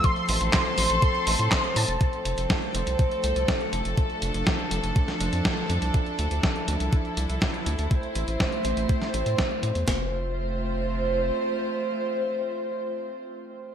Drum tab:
HH |xxoxxxoxxxoxxxox|xxxxxxxxxxxxxxxx|xxxxxxxxxxxxxxxx|xxxxxxxxxxxxxxxx|
CP |----x-------x---|----------------|----------------|----------------|
SD |----o-------o---|----o-------o---|----o----o--o---|----o-------o---|
BD |o---o---o---o---|o---o---o---o---|o---o---o---o---|o---o---o---o---|

HH |xxxxxxxxxxxxxxxx|----------------|----------------|
CP |----------------|----------------|----------------|
SD |----o----o--o---|o---------------|----------------|
BD |o---o---o---o---|o---------------|----------------|